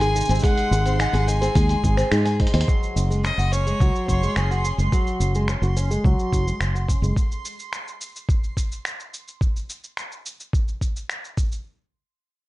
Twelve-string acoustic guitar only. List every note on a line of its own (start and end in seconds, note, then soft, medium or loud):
0.02 0.14 G#4 medium
0.15 0.28 D#4 medium
0.29 0.42 C4 medium
0.43 0.84 G#3 medium
0.86 0.98 C4 medium
0.99 1.13 D#4 medium
1.13 1.26 G#4 medium
1.28 1.40 D#4 medium
1.41 1.54 C4 medium
1.55 1.96 G#3 loud
1.97 2.10 C4 medium
2.12 2.25 D#4 medium
2.25 2.38 G#4 medium
2.40 2.52 D#4 medium
2.54 2.66 C4 medium
2.68 3.08 F#3 medium
3.10 3.23 G#3 medium
3.24 3.37 C#4 medium
3.39 3.51 F#4 medium
3.53 3.65 C#4 medium
3.67 3.79 G#3 medium
3.81 4.21 F#3 loud
4.23 4.35 G#3 medium
4.37 4.50 C#4 medium
4.51 4.63 F#4 medium
4.65 4.77 C#4 medium
4.79 4.91 G#3 medium
4.93 5.33 F#3 medium
5.36 5.47 G#3 medium
5.49 5.62 C#4 medium
5.63 5.75 F#4 medium
5.77 5.89 C#4 medium
5.91 6.03 G#3 medium
6.05 6.45 F#3 loud
6.47 6.59 G#3 medium
6.61 6.74 C#4 medium
6.75 6.87 F#4 medium
6.89 7.01 C#4 medium
7.03 7.15 G#3 medium